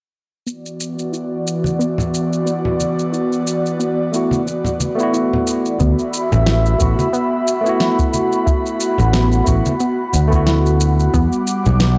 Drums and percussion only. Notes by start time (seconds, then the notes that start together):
0.47 shaker
0.66 shaker
0.80 shaker
0.99 shaker
1.14 shaker
1.47 shaker
1.64 high conga, shaker
1.81 shaker
1.98 low conga, shaker
2.14 shaker
2.33 shaker
2.47 shaker
2.65 low conga
2.80 high conga, shaker
2.99 shaker
3.14 shaker
3.32 shaker
3.47 shaker
3.66 shaker
3.80 shaker
4.14 shaker
4.31 high conga, shaker
4.47 shaker
4.64 low conga, shaker
4.80 high conga, shaker
4.99 shaker
5.14 shaker
5.33 low conga
5.47 shaker
5.65 shaker
5.80 kick, shaker
5.99 shaker
6.13 shaker
6.32 low conga, shaker
6.46 snare, shaker
6.66 shaker
6.80 kick, shaker
6.99 high conga, shaker
7.14 shaker
7.48 shaker
7.66 shaker
7.80 snare, shaker
7.99 kick, shaker
8.13 high conga, shaker
8.32 shaker
8.47 kick, shaker
8.66 shaker
8.80 shaker
8.98 low conga, shaker
9.13 snare, shaker
9.32 shaker
9.47 kick, shaker
9.65 high conga, shaker
9.80 shaker
10.13 high conga, shaker
10.32 kick, shaker
10.47 snare, shaker
10.66 shaker
10.80 shaker
11.00 shaker
11.14 kick, shaker
11.32 shaker
11.47 shaker
11.66 low conga, shaker
11.80 snare, shaker